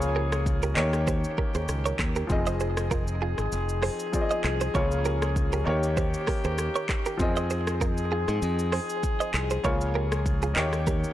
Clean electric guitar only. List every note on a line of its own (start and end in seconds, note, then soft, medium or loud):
0.16 0.28 G4 medium
0.16 0.27 A#4 medium
0.63 0.73 G4 medium
0.63 0.73 A#4 medium
0.77 0.89 A#4 medium
0.77 0.89 C#5 medium
1.08 1.20 G4 medium
1.08 1.19 C5 medium
1.38 1.50 G4 medium
1.38 1.50 A#4 medium
1.55 1.65 G#4 medium
1.55 1.64 C5 medium
1.86 1.96 A#4 medium
1.86 1.95 C#5 medium
2.16 2.26 G4 medium
2.16 2.26 A#4 medium
2.47 2.57 C5 medium
2.47 2.56 D#5 medium
2.61 2.73 G#4 medium
2.61 2.72 C5 medium
2.91 3.03 F4 medium
2.91 3.03 A#4 medium
3.22 3.34 F4 medium
3.22 3.33 G#4 medium
3.83 3.95 G#4 medium
3.83 3.95 C5 medium
4.31 4.41 C5 medium
4.31 4.40 D#5 medium
4.61 4.71 G#4 medium
4.61 4.71 C5 medium
4.75 4.87 A#4 medium
4.75 4.86 C#5 medium
5.06 5.18 G4 medium
5.06 5.17 A#4 medium
5.53 5.63 G4 medium
5.53 5.62 A#4 medium
5.67 5.79 A#4 medium
5.67 5.78 C#5 medium
5.97 6.09 G4 medium
5.97 6.09 C5 medium
6.28 6.40 G4 medium
6.28 6.39 A#4 medium
6.45 6.55 G#4 medium
6.45 6.54 C5 medium
6.76 6.85 A#4 medium
6.76 6.85 C#5 medium
7.06 7.16 G4 medium
7.06 7.16 A#4 medium
7.37 7.47 C5 medium
7.37 7.46 D#5 medium
7.51 7.63 G#4 medium
7.51 7.62 C5 medium
7.81 7.93 F4 medium
7.81 7.93 A#4 medium
8.12 8.24 F4 medium
8.12 8.23 G#4 medium
8.73 8.85 G#4 medium
8.73 8.85 C5 medium
9.20 9.30 C5 medium
9.20 9.30 D#5 medium
9.51 9.61 G#4 medium
9.51 9.60 C5 medium
9.65 9.77 A#4 medium
9.65 9.76 C#5 medium
9.95 10.07 G4 medium
9.95 10.07 A#4 medium
10.43 10.53 F4 medium
10.43 10.52 G#4 medium
10.57 10.69 G4 medium
10.57 10.68 A#4 medium
10.87 10.99 G4 medium
10.87 10.99 A#4 medium